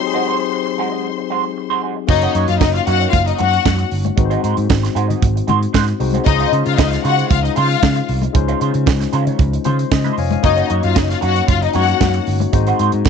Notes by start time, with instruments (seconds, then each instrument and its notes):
Already playing: tine electric piano F#3, string section C5 C6
0.00 tine electric piano C4 D#4 G4, muted clean electric guitar stroke
0.07 tine electric piano G#4
0.14 clean electric guitar G#3 D#4 F#4 C5
0.26 clean electric guitar G#3 D#4 F#4 C5
0.40 muted clean electric guitar stroke
0.52 muted clean electric guitar stroke
0.66 muted clean electric guitar stroke
0.78 clean electric guitar G#3 D#4 F#4 C5
0.92 clean electric guitar G#3 D#4 F#4 D#5
1.18 muted clean electric guitar stroke
1.30 clean electric guitar G#3 D#4 F#4 C5
1.44 muted clean electric guitar stroke
1.57 muted clean electric guitar stroke
1.70 clean electric guitar G#3 D#4 F#4 C5
1.82 clean electric guitar G#3 D#4 F#4 C5
1.97 muted clean electric guitar stroke
2.07 picked electric bass F#1, tine electric piano A#3 C#4 D#4 F#4 C#5, string section D#4 D#5, muted clean electric guitar stroke, kick, crash, muted conga
2.22 clean electric guitar A#3 D#4 F#4 C#5, closed hi-hat
2.34 picked electric bass F#2, clean electric guitar A#3 D#4 F#4 C#5, closed hi-hat
2.48 picked electric bass F#2, string section F4 F5, muted clean electric guitar stroke, closed hi-hat
2.60 picked electric bass F#1, string section D#4 D#5, muted clean electric guitar stroke, kick, snare, high conga
2.74 string section F4 F5, muted clean electric guitar stroke, closed hi-hat
2.87 picked electric bass F#2, clean electric guitar A#3 D#4 F#4 C#5, string section F#4 F#5, closed hi-hat
3.00 clean electric guitar A#3 D#4 F#4 C#5, closed hi-hat
3.13 picked electric bass F#1, string section F4 F5, kick, closed hi-hat, muted conga
3.27 string section D#4 D#5, muted clean electric guitar stroke, closed hi-hat
3.38 picked electric bass F#2, clean electric guitar A#3 D#4 F#4 C#5, string section F#4 F#5, closed hi-hat, muted conga
3.53 muted clean electric guitar stroke, closed hi-hat
3.65 picked electric bass F#2, muted clean electric guitar stroke, kick, snare, high conga
3.78 muted clean electric guitar stroke, closed hi-hat
3.91 picked electric bass G1, open hi-hat
4.05 muted clean electric guitar stroke, closed hi-hat, high conga
4.16 picked electric bass G#1, tine electric piano G#3 C4 D#4 F#4 B4, muted clean electric guitar stroke, kick, closed hi-hat, muted conga
4.25 tine electric piano C5
4.30 clean electric guitar G#3 D#4 F#4 C5, closed hi-hat
4.43 picked electric bass G#2, clean electric guitar G#3 D#4 F#4 C5, closed hi-hat
4.57 picked electric bass G#2, muted clean electric guitar stroke, closed hi-hat
4.69 picked electric bass G#1, muted clean electric guitar stroke, kick, snare, high conga
4.83 muted clean electric guitar stroke, snare, closed hi-hat
4.95 picked electric bass G#2, clean electric guitar G#3 D#4 F#4 C5, closed hi-hat
5.09 clean electric guitar G#3 D#4 F#4 D#5, closed hi-hat, low conga
5.22 picked electric bass G#1, kick, closed hi-hat, muted conga
5.36 muted clean electric guitar stroke, closed hi-hat
5.47 picked electric bass G#2, clean electric guitar G#3 D#4 F#4 C5, closed hi-hat, muted conga, low conga
5.61 muted clean electric guitar stroke, closed hi-hat
5.73 picked electric bass G#2, clean electric guitar G#3 D#4 F#4 C5, kick, snare, high conga
5.88 muted clean electric guitar stroke, closed hi-hat
6.00 picked electric bass C2, tine electric piano G#3 C4 D#4 F#4 C5, muted clean electric guitar stroke, open hi-hat
6.13 clean electric guitar G#3 D#4 F#4 C5, closed hi-hat, high conga
6.25 picked electric bass C#2, tine electric piano G#3 C#4 D#4 F4 C5, string section D#4 D#5, muted clean electric guitar stroke, kick, closed hi-hat, muted conga
6.40 clean electric guitar G#3 D#4 F4 C5, closed hi-hat
6.51 picked electric bass C#3, clean electric guitar G#3 D#4 F4 C5, closed hi-hat
6.66 picked electric bass C#3, string section F4 F5, closed hi-hat
6.78 picked electric bass C#2, string section D#4 D#5, muted clean electric guitar stroke, kick, snare, high conga
6.91 string section F4 F5, muted clean electric guitar stroke, snare, closed hi-hat
7.04 picked electric bass C#3, clean electric guitar G#3 D#4 F4 C5, string section F#4 F#5, closed hi-hat
7.17 clean electric guitar G#3 D#4 F4 C5, closed hi-hat
7.30 picked electric bass C#2, string section F4 F5, kick, closed hi-hat, muted conga
7.44 string section D#4 D#5, muted clean electric guitar stroke, closed hi-hat
7.56 picked electric bass C#3, clean electric guitar G#3 D#4 F4 C5, string section F4 F5, closed hi-hat, muted conga
7.70 muted clean electric guitar stroke, closed hi-hat
7.82 picked electric bass C#3, muted clean electric guitar stroke, kick, snare, high conga
7.96 muted clean electric guitar stroke, closed hi-hat
8.09 picked electric bass C2, open hi-hat
8.22 muted clean electric guitar stroke, closed hi-hat, high conga
8.33 picked electric bass C#2, tine electric piano G#3 C#4 D#4 F4 C5, muted clean electric guitar stroke, kick, closed hi-hat, muted conga
8.48 clean electric guitar G#3 D#4 F4 C5, closed hi-hat
8.60 picked electric bass C#3, clean electric guitar G#3 D#4 F4 C5, closed hi-hat
8.74 picked electric bass C#3, closed hi-hat
8.86 picked electric bass C#2, muted clean electric guitar stroke, kick, snare, high conga
9.00 muted clean electric guitar stroke, snare, closed hi-hat
9.13 picked electric bass C#3, clean electric guitar G#3 D#4 F4 C5, closed hi-hat
9.27 clean electric guitar G#3 D#4 F4 C#5, closed hi-hat, low conga
9.39 picked electric bass C#2, kick, closed hi-hat, muted conga
9.53 muted clean electric guitar stroke, closed hi-hat
9.64 picked electric bass C#3, clean electric guitar G#3 D#4 F4 C5, tine electric piano C5, closed hi-hat, muted conga, low conga
9.79 muted clean electric guitar stroke, closed hi-hat
9.91 picked electric bass C#3, tine electric piano D#5, muted clean electric guitar stroke, kick, snare, high conga
10.04 clean electric guitar G#3 D#4 F4 C5, tine electric piano C5 D#5, closed hi-hat, high conga
10.17 picked electric bass F1, tine electric piano C#5 F5 G#5, muted clean electric guitar stroke, open hi-hat
10.31 tine electric piano F5 G#5, muted clean electric guitar stroke, closed hi-hat, high conga
10.43 picked electric bass F#1, tine electric piano A#3 C#4 D#4 F#4 C#5, string section D#4 D#5, muted clean electric guitar stroke, kick, closed hi-hat
10.56 clean electric guitar A#3 D#4 F#4 C#5, closed hi-hat
10.69 picked electric bass F#2, clean electric guitar A#3 D#4 F#4 C#5, closed hi-hat
10.83 picked electric bass F#2, string section F4 F5, muted clean electric guitar stroke, closed hi-hat
10.96 picked electric bass F#1, string section D#4 D#5, muted clean electric guitar stroke, kick, snare, high conga
11.09 string section F4 F5, muted clean electric guitar stroke, snare, closed hi-hat
11.21 picked electric bass F#2, clean electric guitar A#3 D#4 F#4 C#5, string section F#4 F#5, closed hi-hat
11.35 clean electric guitar A#3 D#4 C#5, closed hi-hat
11.48 picked electric bass F#1, string section F4 F5, kick, closed hi-hat, muted conga
11.62 string section D#4 D#5, muted clean electric guitar stroke, closed hi-hat
11.73 picked electric bass F#2, tine electric piano G#3 C#4 D#4 F#4 C#5, clean electric guitar A#3 D#4 F#4 C#5, string section F#4 F#5, closed hi-hat, muted conga
11.81 tine electric piano A#3
11.88 muted clean electric guitar stroke, closed hi-hat
12.01 picked electric bass F#2, kick, snare, high conga
12.14 muted clean electric guitar stroke, closed hi-hat
12.27 picked electric bass G1, open hi-hat
12.40 muted clean electric guitar stroke, closed hi-hat, high conga
12.52 picked electric bass G#1, tine electric piano G#3 C4 D#4 F#4 C5, muted clean electric guitar stroke, kick, closed hi-hat, muted conga
12.67 clean electric guitar G#3 D#4 F#4 C5, closed hi-hat
12.79 picked electric bass G#2, clean electric guitar G#3 D#4 F#4 C5, closed hi-hat
12.92 picked electric bass G#2, muted clean electric guitar stroke, closed hi-hat
13.05 picked electric bass G#1, muted clean electric guitar stroke, kick, snare, high conga